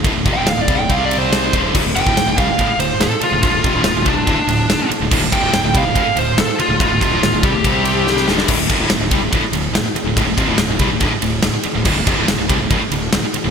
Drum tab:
CC |----------------|x---------------|----------------|x---------------|
RD |x-x-x-x-x-x-x-x-|--x-x-x-x-x-x-x-|x-x-x-x-x-x-x-x-|--x-x-x-x-x-x-x-|
SD |----o-------o---|----o-------o---|----o-------o---|----o-------o---|
BD |o-o---o-o-----o-|o--o--o-o-------|o-o---o-o-------|o-o---o-o-------|

CC |----------------|x---------------|----------------|x---------------|
RD |x-x-x-x-x-x-----|--x-x-x-x-x-x-x-|x-x-x-x-x-x-x-x-|--x-x-x-x-x-x-x-|
SD |----o-------oooo|----o-------o---|----o-------o---|----o-------o---|
BD |o-o---o-o-------|o-o---o-o-------|o-o---o-o-------|o-o---o-o-------|